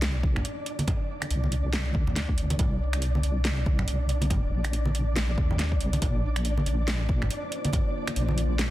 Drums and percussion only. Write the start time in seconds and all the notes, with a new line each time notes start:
0.02 snare, closed hi-hat
0.23 kick, muted conga, high conga
0.36 finger snap, low conga
0.45 closed hi-hat
0.66 closed hi-hat
0.79 closed hi-hat, high conga
0.88 kick, closed hi-hat, low conga
1.22 finger snap, closed hi-hat, muted conga
1.31 closed hi-hat
1.44 high conga
1.52 closed hi-hat
1.73 snare, closed hi-hat
1.94 kick, high conga
2.07 low conga
2.16 snare, closed hi-hat
2.29 kick
2.38 closed hi-hat
2.50 closed hi-hat, muted conga, high conga
2.59 kick, closed hi-hat, low conga
2.93 finger snap, closed hi-hat
3.02 closed hi-hat
3.15 high conga
3.23 closed hi-hat
3.45 snare, closed hi-hat
3.66 kick, muted conga, high conga
3.79 finger snap, low conga
3.88 closed hi-hat
4.09 closed hi-hat
4.21 closed hi-hat, high conga
4.30 kick, closed hi-hat, low conga
4.64 finger snap, closed hi-hat, muted conga
4.73 closed hi-hat
4.86 high conga
4.95 closed hi-hat
5.16 snare, closed hi-hat
5.38 kick, high conga
5.51 low conga
5.59 snare, closed hi-hat
5.72 kick
5.81 closed hi-hat
5.93 closed hi-hat, muted conga, high conga
6.02 kick, closed hi-hat, low conga
6.36 finger snap, closed hi-hat
6.45 closed hi-hat
6.57 high conga
6.66 closed hi-hat
6.88 snare, closed hi-hat
7.09 kick, muted conga, high conga
7.22 finger snap, low conga
7.31 closed hi-hat
7.52 closed hi-hat
7.65 closed hi-hat, high conga
7.73 kick, closed hi-hat, low conga
8.07 finger snap, closed hi-hat, muted conga
8.16 closed hi-hat
8.29 high conga
8.38 closed hi-hat
8.59 snare, closed hi-hat